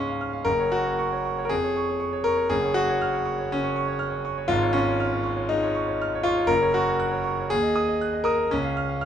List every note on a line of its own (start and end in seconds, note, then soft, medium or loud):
0.00 0.49 C#2 soft
0.00 0.49 G#2 soft
0.00 0.49 G#3 medium
0.00 0.49 C#4 medium
0.00 0.49 D#4 medium
0.00 0.09 F5 soft
0.00 0.49 C#6 soft
0.00 0.21 F6 soft
0.09 0.29 F5 soft
0.21 0.41 F6 soft
0.33 0.46 F5 soft
0.45 1.46 F#1 medium
0.45 1.47 F#2 medium
0.45 0.72 A#4 loud
0.60 0.81 C#5 soft
0.72 1.43 F#4 medium
0.72 0.94 C#6 soft
0.86 1.07 C#5 soft
0.99 1.20 C#6 medium
1.13 1.33 C#5 soft
1.25 1.45 C#6 soft
1.38 1.51 C#5 soft
1.45 1.51 A#4 medium
1.49 2.48 F2 medium
1.49 2.25 G#4 loud
1.64 1.84 C#5 soft
1.76 1.96 C#6 medium
1.89 2.09 C#5 soft
2.00 2.20 C#6 medium
2.13 2.33 C#5 soft
2.24 2.50 A#4 loud
2.24 2.46 C#6 medium
2.37 2.50 C#5 soft
2.50 3.48 F#1 medium
2.50 3.49 F#2 medium
2.50 2.76 G#4 loud
2.64 2.84 C#5 soft
2.74 3.51 F#4 loud
2.74 2.97 C#6 medium
2.89 3.09 C#5 soft
3.01 3.22 F6 medium
3.13 3.33 C#5 soft
3.25 3.46 C#6 medium
3.39 3.59 C#5 soft
3.52 3.72 C#3 medium
3.52 4.02 C#4 medium
3.64 3.84 C#5 soft
3.76 3.97 C#6 medium
3.88 4.08 C#5 soft
3.99 4.20 F6 medium
4.10 4.32 C#5 medium
4.25 4.45 C#6 medium
4.38 4.50 C#5 soft
4.48 5.45 G#1 medium
4.48 5.46 G#2 medium
4.48 4.74 F4 loud
4.62 4.82 C#5 medium
4.73 5.48 C#4 loud
4.73 4.94 C#6 medium
4.88 5.08 C#5 soft
5.00 5.20 F6 medium
5.13 5.33 C#5 soft
5.24 5.44 C#6 medium
5.37 5.57 C#5 soft
5.49 5.70 G#3 soft
5.49 6.25 D#4 loud
5.63 5.83 C#5 medium
5.75 5.95 C#6 medium
5.88 6.08 C#5 medium
6.02 6.21 F6 medium
6.15 6.34 C#5 medium
6.23 6.49 F4 loud
6.23 6.45 C#6 medium
6.37 6.49 C#5 soft
6.47 7.46 F#1 medium
6.47 7.47 F#2 medium
6.47 6.73 A#4 loud
6.62 6.82 C#5 medium
6.74 7.50 F#4 loud
6.74 6.95 C#6 medium
6.89 7.08 C#5 soft
7.00 7.20 F#6 medium
7.11 7.32 C#5 medium
7.24 7.45 C#6 medium
7.39 7.51 C#5 soft
7.50 8.48 D#2 medium
7.50 8.26 G#4 loud
7.62 7.83 D#5 soft
7.76 7.96 D#6 medium
7.88 8.08 D#5 soft
8.01 8.21 F#6 medium
8.13 8.33 D#5 medium
8.24 8.50 A#4 loud
8.24 8.45 D#6 medium
8.39 8.51 D#5 soft
8.51 9.05 C#2 medium
8.51 9.05 C#4 medium
8.64 8.84 F5 soft
8.77 8.97 F6 medium
8.89 9.05 F5 soft
9.01 9.05 F6 medium